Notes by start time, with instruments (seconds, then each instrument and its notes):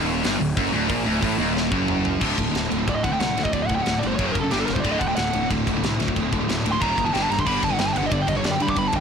Already playing: picked electric bass D#1, distorted electric guitar D#2, analog synth pad D3 F#3 A3 F#4 A4
0.24 picked electric bass G1, distorted electric guitar G2, snare, open hi-hat
0.40 picked electric bass D1, distorted electric guitar D2
0.57 picked electric bass F#1, distorted electric guitar F#2, kick, open hi-hat
0.72 picked electric bass D1, distorted electric guitar D2
0.88 picked electric bass A#1, distorted electric guitar A#2, kick, open hi-hat
1.04 picked electric bass D1, distorted electric guitar D2
1.22 picked electric bass A1, distorted electric guitar A2, kick, open hi-hat
1.38 picked electric bass D#1, distorted electric guitar D#2
1.57 snare
1.72 picked electric bass F#1, distorted electric guitar F#2, kick
1.88 mid tom
2.05 floor tom
2.20 picked electric bass D1, distorted electric guitar D2 A2 D3, kick, crash
2.37 picked electric bass D1, distorted electric guitar D2 A2 D3, kick, ride
2.44 distorted electric guitar D2 A2
2.51 picked electric bass D1, distorted electric guitar D2 A2, ride
2.55 distorted electric guitar D2 D3, snare
2.69 picked electric bass D1, distorted electric guitar D2 A2 D3, ride
2.78 distorted electric guitar D2 A2
2.87 picked electric bass D1, distorted electric guitar D2 A2 D3, lead electric guitar D5, kick, ride
2.96 lead electric guitar D#5
3.03 picked electric bass D1, distorted electric guitar D2 A2 D3, lead electric guitar F#5, kick, ride
3.12 distorted electric guitar D2 A2, lead electric guitar G5
3.19 picked electric bass C2, distorted electric guitar D2 A2 D3, lead electric guitar F#5, snare, ride
3.36 picked electric bass D2, distorted electric guitar D2 A2 D3, snare, ride
3.44 distorted electric guitar D2 A2, lead electric guitar D#5, kick
3.52 picked electric bass D1, distorted electric guitar D2 A2 D3, lead electric guitar D5, kick, ride
3.62 lead electric guitar D#5
3.67 picked electric bass D1, distorted electric guitar D3, lead electric guitar F#5, kick, ride
3.72 distorted electric guitar D2 A2, lead electric guitar G5
3.79 distorted electric guitar D2 A2, lead electric guitar F#5
3.86 picked electric bass D1, distorted electric guitar D2 A2 D3, snare, ride
3.99 distorted electric guitar D2 A2 D3, lead electric guitar D5
4.03 picked electric bass G1, ride
4.07 distorted electric guitar A2, lead electric guitar C5
4.12 distorted electric guitar D2, lead electric guitar C#5
4.19 picked electric bass F#1, distorted electric guitar F#2 C#3 F#3, kick, ride
4.25 lead electric guitar C5
4.32 picked electric bass F#1, distorted electric guitar F#2 C#3, lead electric guitar A#4, kick, ride
4.36 distorted electric guitar F#3
4.41 distorted electric guitar F#2 C#3, lead electric guitar A4
4.51 picked electric bass G1, distorted electric guitar G2 D3 G3, lead electric guitar G4, snare, ride
4.59 lead electric guitar A4
4.66 picked electric bass G1, distorted electric guitar G2 D3 G3, lead electric guitar A#4, snare, ride
4.74 distorted electric guitar G2 D3, lead electric guitar C5, kick
4.80 distorted electric guitar D2, lead electric guitar D5
4.84 picked electric bass D1, distorted electric guitar A2 D3, kick, ride
4.92 lead electric guitar D#5
4.99 picked electric bass D1, distorted electric guitar D2 A2 D3, lead electric guitar F#5, kick, ride
5.08 distorted electric guitar D2 A2, lead electric guitar G5
5.16 picked electric bass D1, distorted electric guitar D2 A2 D3, lead electric guitar F#5, snare, ride
5.33 picked electric bass D1, distorted electric guitar D2 A2 D3, ride
5.43 distorted electric guitar D2 A2
5.51 picked electric bass D1, distorted electric guitar D2 A2 D3, kick, ride
5.67 picked electric bass D1, distorted electric guitar D2 A2 D3, kick, ride
5.76 distorted electric guitar D2 A2
5.82 picked electric bass C2, distorted electric guitar D2 A2 D3, snare, ride
5.99 distorted electric guitar D2 A2 D3, picked electric bass D2, snare, ride
6.08 distorted electric guitar D2 A2, kick
6.16 picked electric bass D1, distorted electric guitar D2 A2 D3, kick, ride
6.32 picked electric bass D1, distorted electric guitar D2 A2 D3, kick, ride
6.41 distorted electric guitar D2 A2
6.49 picked electric bass D1, distorted electric guitar D2 A2 D3, snare, ride
6.65 picked electric bass D1, distorted electric guitar D2 A2 D3, ride
6.72 distorted electric guitar D2 A2, lead electric guitar C6
6.80 picked electric bass D#1, distorted electric guitar D#2 A#2 D#3, lead electric guitar A#5, kick, ride
6.96 picked electric bass F#1, distorted electric guitar D#2 A#2 D#3, kick, ride
7.05 distorted electric guitar D#2 A#2, lead electric guitar A5
7.13 picked electric bass G1, distorted electric guitar G2 D3 G3, lead electric guitar G5, snare, ride
7.23 lead electric guitar A5
7.29 picked electric bass G1, distorted electric guitar G2 D3 G3, lead electric guitar A#5, snare, ride
7.39 distorted electric guitar G2 D3, lead electric guitar C6, kick
7.46 picked electric bass G1, distorted electric guitar G2 D3 G3, analog synth pad D3 G3 B3 G4 B4, lead electric guitar B5, kick, crash
7.62 picked electric bass G1, distorted electric guitar G2 D3 G3, lead electric guitar A5, kick, ride
7.71 distorted electric guitar G2 D3, lead electric guitar F#5
7.79 picked electric bass G1, distorted electric guitar G2 D3 G3, lead electric guitar G5, snare, ride
7.88 lead electric guitar A5
7.93 picked electric bass G1, distorted electric guitar G2 D3 G3, lead electric guitar G5, ride
7.98 lead electric guitar F#5
8.02 distorted electric guitar G2 D3, lead electric guitar D#5
8.10 picked electric bass G1, distorted electric guitar G2 D3 G3, lead electric guitar D5, kick, ride
8.22 lead electric guitar G5
8.27 picked electric bass G1, distorted electric guitar G2 D3 G3, lead electric guitar D#5, kick, ride
8.35 distorted electric guitar G2 D3, lead electric guitar C#5
8.43 picked electric bass F#2, distorted electric guitar G2 D3 G3, lead electric guitar D5, snare, ride
8.51 lead electric guitar G5
8.60 picked electric bass G2, distorted electric guitar G2 D3 G3, lead electric guitar B5, ride
8.67 distorted electric guitar G2 D3, lead electric guitar D6, kick
8.74 picked electric bass G1, distorted electric guitar G2 D3, lead electric guitar B5, kick, ride
8.79 distorted electric guitar G3
8.88 lead electric guitar A5
8.93 picked electric bass G1, distorted electric guitar G2 D3 G3, lead electric guitar G5, kick, ride